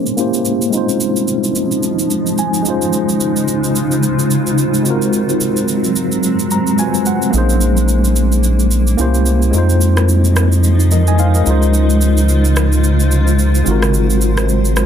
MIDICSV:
0, 0, Header, 1, 5, 480
1, 0, Start_track
1, 0, Tempo, 550459
1, 637, Time_signature, 4, 2, 24, 8
1, 12957, End_track
2, 0, Start_track
2, 0, Title_t, "Tine electric piano"
2, 0, Program_c, 0, 4
2, 0, Control_c, 0, 64, 127
2, 0, Note_on_c, 0, 58, 73
2, 0, Note_on_c, 0, 61, 69
2, 0, Note_on_c, 0, 63, 68
2, 0, Note_on_c, 0, 68, 68
2, 0, Note_on_c, 0, 72, 83
2, 113, Note_off_c, 0, 58, 0
2, 121, Note_off_c, 0, 61, 0
2, 130, Note_off_c, 0, 63, 0
2, 138, Note_off_c, 0, 68, 0
2, 145, Note_on_c, 0, 58, 73
2, 154, Note_on_c, 0, 61, 63
2, 162, Note_on_c, 0, 64, 66
2, 167, Control_c, 0, 64, 0
2, 168, Note_off_c, 0, 72, 0
2, 170, Note_on_c, 0, 67, 63
2, 179, Note_on_c, 0, 72, 80
2, 333, Control_c, 0, 64, 127
2, 608, Note_on_c, 0, 56, 75
2, 625, Note_on_c, 0, 60, 67
2, 631, Note_off_c, 0, 58, 0
2, 635, Note_off_c, 0, 61, 0
2, 639, Note_off_c, 0, 64, 0
2, 642, Note_on_c, 0, 63, 67
2, 643, Note_off_c, 0, 67, 0
2, 648, Note_off_c, 0, 72, 0
2, 648, Control_c, 0, 64, 0
2, 659, Note_on_c, 0, 65, 68
2, 675, Note_on_c, 0, 72, 81
2, 800, Control_c, 0, 64, 127
2, 2081, Note_on_c, 0, 80, 72
2, 2269, Note_off_c, 0, 56, 0
2, 2277, Note_off_c, 0, 60, 0
2, 2286, Note_off_c, 0, 63, 0
2, 2288, Note_on_c, 0, 56, 70
2, 2294, Note_off_c, 0, 65, 0
2, 2303, Note_off_c, 0, 72, 0
2, 2304, Note_on_c, 0, 61, 63
2, 2321, Note_on_c, 0, 63, 62
2, 2328, Control_c, 0, 64, 0
2, 2338, Note_on_c, 0, 65, 63
2, 2355, Note_on_c, 0, 72, 76
2, 2478, Control_c, 0, 64, 127
2, 2525, Note_off_c, 0, 80, 0
2, 4187, Note_off_c, 0, 56, 0
2, 4195, Note_off_c, 0, 61, 0
2, 4204, Note_off_c, 0, 63, 0
2, 4208, Note_on_c, 0, 56, 65
2, 4212, Note_off_c, 0, 65, 0
2, 4221, Note_off_c, 0, 72, 0
2, 4225, Note_on_c, 0, 60, 63
2, 4242, Note_on_c, 0, 65, 59
2, 4247, Control_c, 0, 64, 0
2, 4258, Note_on_c, 0, 66, 64
2, 4275, Note_on_c, 0, 70, 76
2, 4403, Control_c, 0, 64, 127
2, 5682, Note_on_c, 0, 82, 64
2, 5869, Note_off_c, 0, 56, 0
2, 5877, Note_off_c, 0, 60, 0
2, 5885, Note_off_c, 0, 65, 0
2, 5894, Note_off_c, 0, 66, 0
2, 5902, Note_off_c, 0, 70, 0
2, 5902, Note_off_c, 0, 82, 0
2, 5905, Note_on_c, 0, 56, 55
2, 5913, Note_on_c, 0, 60, 52
2, 5921, Note_on_c, 0, 65, 51
2, 5921, Note_on_c, 0, 80, 69
2, 5930, Note_on_c, 0, 66, 48
2, 5938, Note_on_c, 0, 71, 48
2, 5993, Note_off_c, 0, 71, 0
2, 5995, Note_on_c, 0, 72, 61
2, 6142, Note_off_c, 0, 80, 0
2, 6162, Note_on_c, 0, 78, 66
2, 6368, Note_on_c, 0, 58, 77
2, 6383, Note_off_c, 0, 78, 0
2, 6385, Note_on_c, 0, 61, 64
2, 6391, Note_off_c, 0, 56, 0
2, 6395, Note_off_c, 0, 60, 0
2, 6399, Note_off_c, 0, 65, 0
2, 6402, Note_on_c, 0, 63, 65
2, 6403, Note_off_c, 0, 66, 0
2, 6406, Control_c, 0, 64, 0
2, 6418, Note_on_c, 0, 68, 64
2, 6425, Note_off_c, 0, 72, 0
2, 6435, Note_on_c, 0, 72, 82
2, 6541, Control_c, 0, 64, 127
2, 7793, Note_off_c, 0, 58, 0
2, 7802, Note_off_c, 0, 61, 0
2, 7810, Note_off_c, 0, 63, 0
2, 7819, Note_off_c, 0, 68, 0
2, 7825, Note_on_c, 0, 58, 73
2, 7827, Note_off_c, 0, 72, 0
2, 7833, Note_on_c, 0, 61, 65
2, 7842, Note_on_c, 0, 64, 69
2, 7849, Control_c, 0, 64, 0
2, 7850, Note_on_c, 0, 67, 65
2, 7858, Note_on_c, 0, 72, 79
2, 7981, Control_c, 0, 64, 127
2, 8288, Note_on_c, 0, 56, 72
2, 8305, Note_on_c, 0, 60, 70
2, 8311, Note_off_c, 0, 58, 0
2, 8315, Note_off_c, 0, 61, 0
2, 8319, Note_off_c, 0, 64, 0
2, 8321, Note_on_c, 0, 63, 69
2, 8323, Note_off_c, 0, 67, 0
2, 8327, Note_off_c, 0, 72, 0
2, 8328, Control_c, 0, 64, 0
2, 8338, Note_on_c, 0, 65, 67
2, 8355, Note_on_c, 0, 72, 79
2, 8459, Control_c, 0, 64, 127
2, 9512, Note_off_c, 0, 72, 0
2, 9521, Note_on_c, 0, 75, 60
2, 9527, Note_on_c, 0, 70, 50
2, 9651, Note_off_c, 0, 75, 0
2, 9654, Note_off_c, 0, 70, 0
2, 9660, Note_on_c, 0, 80, 68
2, 9665, Note_on_c, 0, 75, 59
2, 9754, Note_off_c, 0, 80, 0
2, 9756, Note_off_c, 0, 75, 0
2, 9761, Note_on_c, 0, 77, 70
2, 9766, Note_on_c, 0, 72, 58
2, 9891, Note_off_c, 0, 77, 0
2, 9894, Note_off_c, 0, 72, 0
2, 9900, Note_on_c, 0, 75, 61
2, 9906, Note_on_c, 0, 70, 55
2, 9948, Note_off_c, 0, 56, 0
2, 9957, Note_off_c, 0, 60, 0
2, 9965, Note_off_c, 0, 63, 0
2, 9967, Note_on_c, 0, 56, 68
2, 9974, Note_off_c, 0, 65, 0
2, 9984, Note_on_c, 0, 61, 62
2, 10001, Note_on_c, 0, 63, 66
2, 10008, Control_c, 0, 64, 0
2, 10017, Note_on_c, 0, 65, 60
2, 10034, Note_on_c, 0, 72, 75
2, 10126, Note_off_c, 0, 75, 0
2, 10129, Note_off_c, 0, 70, 0
2, 10139, Control_c, 0, 64, 127
2, 11867, Note_off_c, 0, 56, 0
2, 11875, Note_off_c, 0, 61, 0
2, 11884, Note_off_c, 0, 63, 0
2, 11889, Note_on_c, 0, 56, 67
2, 11892, Note_off_c, 0, 65, 0
2, 11900, Note_off_c, 0, 72, 0
2, 11905, Note_on_c, 0, 60, 64
2, 11922, Note_on_c, 0, 65, 63
2, 11927, Control_c, 0, 64, 0
2, 11939, Note_on_c, 0, 66, 65
2, 11955, Note_on_c, 0, 70, 73
2, 12061, Control_c, 0, 64, 127
2, 12957, Note_off_c, 0, 56, 0
2, 12957, Note_off_c, 0, 60, 0
2, 12957, Note_off_c, 0, 65, 0
2, 12957, Note_off_c, 0, 66, 0
2, 12957, Note_off_c, 0, 70, 0
2, 12957, End_track
3, 0, Start_track
3, 0, Title_t, "Ambient pad"
3, 0, Program_c, 1, 92
3, 0, Note_on_c, 1, 56, 85
3, 0, Note_on_c, 1, 58, 75
3, 0, Note_on_c, 1, 61, 93
3, 142, Note_off_c, 1, 56, 0
3, 142, Note_off_c, 1, 61, 0
3, 617, Note_off_c, 1, 58, 0
3, 635, Note_on_c, 1, 53, 86
3, 635, Note_on_c, 1, 63, 96
3, 636, Note_on_c, 1, 56, 74
3, 2299, Note_off_c, 1, 53, 0
3, 2316, Note_on_c, 1, 49, 81
3, 2316, Note_on_c, 1, 65, 89
3, 2316, Note_on_c, 1, 72, 76
3, 4201, Note_off_c, 1, 56, 0
3, 4201, Note_off_c, 1, 63, 0
3, 4217, Note_off_c, 1, 49, 0
3, 4217, Note_off_c, 1, 65, 0
3, 4217, Note_off_c, 1, 72, 0
3, 4236, Note_on_c, 1, 54, 83
3, 4236, Note_on_c, 1, 56, 75
3, 4236, Note_on_c, 1, 60, 94
3, 6375, Note_off_c, 1, 54, 0
3, 6375, Note_off_c, 1, 60, 0
3, 6397, Note_on_c, 1, 58, 77
3, 7801, Note_off_c, 1, 56, 0
3, 8298, Note_off_c, 1, 58, 0
3, 8316, Note_on_c, 1, 53, 84
3, 8316, Note_on_c, 1, 56, 74
3, 8316, Note_on_c, 1, 63, 96
3, 9980, Note_off_c, 1, 53, 0
3, 9996, Note_on_c, 1, 49, 82
3, 9996, Note_on_c, 1, 65, 87
3, 9996, Note_on_c, 1, 72, 75
3, 11881, Note_off_c, 1, 63, 0
3, 11897, Note_off_c, 1, 49, 0
3, 11897, Note_off_c, 1, 65, 0
3, 11917, Note_on_c, 1, 54, 82
3, 12957, Note_off_c, 1, 54, 0
3, 12957, Note_off_c, 1, 56, 0
3, 12957, Note_off_c, 1, 72, 0
3, 12957, End_track
4, 0, Start_track
4, 0, Title_t, "Analog synth bass"
4, 0, Program_c, 2, 38
4, 6396, Note_on_c, 2, 34, 84
4, 7808, Note_off_c, 2, 34, 0
4, 7836, Note_on_c, 2, 36, 85
4, 8307, Note_off_c, 2, 36, 0
4, 8316, Note_on_c, 2, 41, 84
4, 9963, Note_off_c, 2, 41, 0
4, 9996, Note_on_c, 2, 37, 88
4, 11881, Note_off_c, 2, 37, 0
4, 11917, Note_on_c, 2, 32, 86
4, 12957, Note_off_c, 2, 32, 0
4, 12957, End_track
5, 0, Start_track
5, 0, Title_t, "Drums"
5, 56, Note_on_c, 9, 82, 41
5, 143, Note_off_c, 9, 82, 0
5, 156, Note_on_c, 9, 82, 66
5, 243, Note_off_c, 9, 82, 0
5, 295, Note_on_c, 9, 82, 56
5, 382, Note_off_c, 9, 82, 0
5, 395, Note_on_c, 9, 82, 81
5, 482, Note_off_c, 9, 82, 0
5, 538, Note_on_c, 9, 82, 44
5, 625, Note_off_c, 9, 82, 0
5, 637, Note_on_c, 9, 82, 70
5, 724, Note_off_c, 9, 82, 0
5, 777, Note_on_c, 9, 82, 53
5, 864, Note_off_c, 9, 82, 0
5, 876, Note_on_c, 9, 82, 82
5, 963, Note_off_c, 9, 82, 0
5, 1016, Note_on_c, 9, 82, 54
5, 1103, Note_off_c, 9, 82, 0
5, 1116, Note_on_c, 9, 82, 65
5, 1203, Note_off_c, 9, 82, 0
5, 1255, Note_on_c, 9, 82, 49
5, 1342, Note_off_c, 9, 82, 0
5, 1357, Note_on_c, 9, 82, 80
5, 1444, Note_off_c, 9, 82, 0
5, 1496, Note_on_c, 9, 82, 47
5, 1583, Note_off_c, 9, 82, 0
5, 1597, Note_on_c, 9, 82, 70
5, 1684, Note_off_c, 9, 82, 0
5, 1735, Note_on_c, 9, 82, 52
5, 1823, Note_off_c, 9, 82, 0
5, 1837, Note_on_c, 9, 82, 79
5, 1924, Note_off_c, 9, 82, 0
5, 1976, Note_on_c, 9, 82, 41
5, 2063, Note_off_c, 9, 82, 0
5, 2077, Note_on_c, 9, 82, 64
5, 2164, Note_off_c, 9, 82, 0
5, 2215, Note_on_c, 9, 82, 57
5, 2303, Note_off_c, 9, 82, 0
5, 2315, Note_on_c, 9, 82, 84
5, 2402, Note_off_c, 9, 82, 0
5, 2457, Note_on_c, 9, 82, 47
5, 2544, Note_off_c, 9, 82, 0
5, 2556, Note_on_c, 9, 82, 66
5, 2643, Note_off_c, 9, 82, 0
5, 2696, Note_on_c, 9, 82, 56
5, 2783, Note_off_c, 9, 82, 0
5, 2796, Note_on_c, 9, 82, 87
5, 2883, Note_off_c, 9, 82, 0
5, 2934, Note_on_c, 9, 82, 56
5, 3021, Note_off_c, 9, 82, 0
5, 3035, Note_on_c, 9, 82, 61
5, 3122, Note_off_c, 9, 82, 0
5, 3174, Note_on_c, 9, 82, 47
5, 3261, Note_off_c, 9, 82, 0
5, 3276, Note_on_c, 9, 82, 79
5, 3363, Note_off_c, 9, 82, 0
5, 3415, Note_on_c, 9, 82, 49
5, 3502, Note_off_c, 9, 82, 0
5, 3516, Note_on_c, 9, 82, 72
5, 3604, Note_off_c, 9, 82, 0
5, 3656, Note_on_c, 9, 82, 54
5, 3743, Note_off_c, 9, 82, 0
5, 3756, Note_on_c, 9, 82, 78
5, 3844, Note_off_c, 9, 82, 0
5, 3896, Note_on_c, 9, 82, 43
5, 3983, Note_off_c, 9, 82, 0
5, 3996, Note_on_c, 9, 82, 65
5, 4083, Note_off_c, 9, 82, 0
5, 4135, Note_on_c, 9, 82, 54
5, 4222, Note_off_c, 9, 82, 0
5, 4235, Note_on_c, 9, 82, 81
5, 4322, Note_off_c, 9, 82, 0
5, 4377, Note_on_c, 9, 82, 45
5, 4465, Note_off_c, 9, 82, 0
5, 4476, Note_on_c, 9, 82, 70
5, 4563, Note_off_c, 9, 82, 0
5, 4616, Note_on_c, 9, 82, 53
5, 4703, Note_off_c, 9, 82, 0
5, 4716, Note_on_c, 9, 82, 87
5, 4803, Note_off_c, 9, 82, 0
5, 4855, Note_on_c, 9, 82, 57
5, 4942, Note_off_c, 9, 82, 0
5, 4956, Note_on_c, 9, 82, 66
5, 5043, Note_off_c, 9, 82, 0
5, 5095, Note_on_c, 9, 82, 47
5, 5182, Note_off_c, 9, 82, 0
5, 5196, Note_on_c, 9, 82, 87
5, 5284, Note_off_c, 9, 82, 0
5, 5335, Note_on_c, 9, 82, 48
5, 5423, Note_off_c, 9, 82, 0
5, 5436, Note_on_c, 9, 82, 73
5, 5524, Note_off_c, 9, 82, 0
5, 5576, Note_on_c, 9, 82, 55
5, 5663, Note_off_c, 9, 82, 0
5, 5676, Note_on_c, 9, 82, 75
5, 5764, Note_off_c, 9, 82, 0
5, 5816, Note_on_c, 9, 82, 41
5, 5903, Note_off_c, 9, 82, 0
5, 5916, Note_on_c, 9, 82, 65
5, 6004, Note_off_c, 9, 82, 0
5, 6056, Note_on_c, 9, 82, 57
5, 6143, Note_off_c, 9, 82, 0
5, 6156, Note_on_c, 9, 82, 79
5, 6243, Note_off_c, 9, 82, 0
5, 6297, Note_on_c, 9, 82, 46
5, 6385, Note_off_c, 9, 82, 0
5, 6396, Note_on_c, 9, 82, 67
5, 6483, Note_off_c, 9, 82, 0
5, 6537, Note_on_c, 9, 82, 53
5, 6624, Note_off_c, 9, 82, 0
5, 6637, Note_on_c, 9, 82, 82
5, 6724, Note_off_c, 9, 82, 0
5, 6776, Note_on_c, 9, 82, 54
5, 6863, Note_off_c, 9, 82, 0
5, 6876, Note_on_c, 9, 82, 66
5, 6964, Note_off_c, 9, 82, 0
5, 7015, Note_on_c, 9, 82, 51
5, 7103, Note_off_c, 9, 82, 0
5, 7117, Note_on_c, 9, 82, 85
5, 7204, Note_off_c, 9, 82, 0
5, 7256, Note_on_c, 9, 82, 47
5, 7343, Note_off_c, 9, 82, 0
5, 7357, Note_on_c, 9, 82, 72
5, 7444, Note_off_c, 9, 82, 0
5, 7496, Note_on_c, 9, 82, 52
5, 7583, Note_off_c, 9, 82, 0
5, 7597, Note_on_c, 9, 82, 77
5, 7684, Note_off_c, 9, 82, 0
5, 7736, Note_on_c, 9, 82, 43
5, 7823, Note_off_c, 9, 82, 0
5, 7837, Note_on_c, 9, 82, 66
5, 7924, Note_off_c, 9, 82, 0
5, 7975, Note_on_c, 9, 82, 56
5, 8062, Note_off_c, 9, 82, 0
5, 8075, Note_on_c, 9, 82, 84
5, 8162, Note_off_c, 9, 82, 0
5, 8217, Note_on_c, 9, 82, 47
5, 8304, Note_off_c, 9, 82, 0
5, 8316, Note_on_c, 9, 82, 68
5, 8403, Note_off_c, 9, 82, 0
5, 8456, Note_on_c, 9, 82, 55
5, 8543, Note_off_c, 9, 82, 0
5, 8556, Note_on_c, 9, 82, 86
5, 8643, Note_off_c, 9, 82, 0
5, 8695, Note_on_c, 9, 37, 87
5, 8695, Note_on_c, 9, 82, 57
5, 8782, Note_off_c, 9, 37, 0
5, 8782, Note_off_c, 9, 82, 0
5, 8796, Note_on_c, 9, 82, 63
5, 8883, Note_off_c, 9, 82, 0
5, 8935, Note_on_c, 9, 82, 49
5, 9022, Note_off_c, 9, 82, 0
5, 9036, Note_on_c, 9, 82, 82
5, 9038, Note_on_c, 9, 37, 95
5, 9124, Note_off_c, 9, 82, 0
5, 9125, Note_off_c, 9, 37, 0
5, 9175, Note_on_c, 9, 82, 49
5, 9262, Note_off_c, 9, 82, 0
5, 9276, Note_on_c, 9, 82, 75
5, 9363, Note_off_c, 9, 82, 0
5, 9416, Note_on_c, 9, 82, 53
5, 9503, Note_off_c, 9, 82, 0
5, 9517, Note_on_c, 9, 82, 77
5, 9604, Note_off_c, 9, 82, 0
5, 9656, Note_on_c, 9, 82, 42
5, 9743, Note_off_c, 9, 82, 0
5, 9756, Note_on_c, 9, 82, 64
5, 9844, Note_off_c, 9, 82, 0
5, 9895, Note_on_c, 9, 82, 55
5, 9982, Note_off_c, 9, 82, 0
5, 9995, Note_on_c, 9, 82, 82
5, 10082, Note_off_c, 9, 82, 0
5, 10137, Note_on_c, 9, 82, 47
5, 10224, Note_off_c, 9, 82, 0
5, 10236, Note_on_c, 9, 82, 70
5, 10323, Note_off_c, 9, 82, 0
5, 10377, Note_on_c, 9, 82, 55
5, 10464, Note_off_c, 9, 82, 0
5, 10476, Note_on_c, 9, 82, 82
5, 10563, Note_off_c, 9, 82, 0
5, 10616, Note_on_c, 9, 82, 55
5, 10703, Note_off_c, 9, 82, 0
5, 10716, Note_on_c, 9, 82, 65
5, 10803, Note_off_c, 9, 82, 0
5, 10855, Note_on_c, 9, 82, 48
5, 10942, Note_off_c, 9, 82, 0
5, 10957, Note_on_c, 9, 82, 85
5, 10959, Note_on_c, 9, 37, 96
5, 11044, Note_off_c, 9, 82, 0
5, 11046, Note_off_c, 9, 37, 0
5, 11096, Note_on_c, 9, 82, 48
5, 11183, Note_off_c, 9, 82, 0
5, 11197, Note_on_c, 9, 82, 72
5, 11284, Note_off_c, 9, 82, 0
5, 11336, Note_on_c, 9, 82, 54
5, 11423, Note_off_c, 9, 82, 0
5, 11437, Note_on_c, 9, 82, 79
5, 11524, Note_off_c, 9, 82, 0
5, 11576, Note_on_c, 9, 82, 43
5, 11663, Note_off_c, 9, 82, 0
5, 11677, Note_on_c, 9, 82, 64
5, 11764, Note_off_c, 9, 82, 0
5, 11815, Note_on_c, 9, 82, 55
5, 11903, Note_off_c, 9, 82, 0
5, 11915, Note_on_c, 9, 82, 82
5, 12002, Note_off_c, 9, 82, 0
5, 12055, Note_on_c, 9, 37, 85
5, 12057, Note_on_c, 9, 82, 48
5, 12143, Note_off_c, 9, 37, 0
5, 12144, Note_off_c, 9, 82, 0
5, 12156, Note_on_c, 9, 82, 72
5, 12243, Note_off_c, 9, 82, 0
5, 12296, Note_on_c, 9, 82, 55
5, 12384, Note_off_c, 9, 82, 0
5, 12396, Note_on_c, 9, 82, 84
5, 12483, Note_off_c, 9, 82, 0
5, 12535, Note_on_c, 9, 37, 93
5, 12535, Note_on_c, 9, 82, 58
5, 12622, Note_off_c, 9, 37, 0
5, 12622, Note_off_c, 9, 82, 0
5, 12635, Note_on_c, 9, 82, 66
5, 12722, Note_off_c, 9, 82, 0
5, 12774, Note_on_c, 9, 82, 51
5, 12861, Note_off_c, 9, 82, 0
5, 12876, Note_on_c, 9, 82, 86
5, 12878, Note_on_c, 9, 37, 94
5, 12957, Note_off_c, 9, 37, 0
5, 12957, Note_off_c, 9, 82, 0
5, 12957, End_track
0, 0, End_of_file